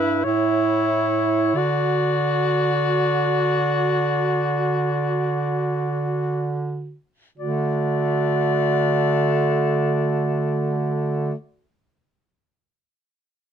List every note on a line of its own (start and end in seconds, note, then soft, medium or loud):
0.00 0.23 G2 medium
0.00 0.24 E4 medium
0.00 0.24 E4 soft
0.00 0.25 B4 medium
0.24 1.56 A2 soft
0.24 1.57 E4 soft
0.24 1.59 E4 soft
0.24 1.57 C#5 medium
1.54 6.95 D3 soft
1.54 6.96 F#4 soft
1.54 6.65 F#4 soft
1.54 6.64 D5 medium
7.38 11.33 D3 soft
7.38 11.34 A3 soft
7.38 11.33 F#4 soft
7.38 11.34 D5 medium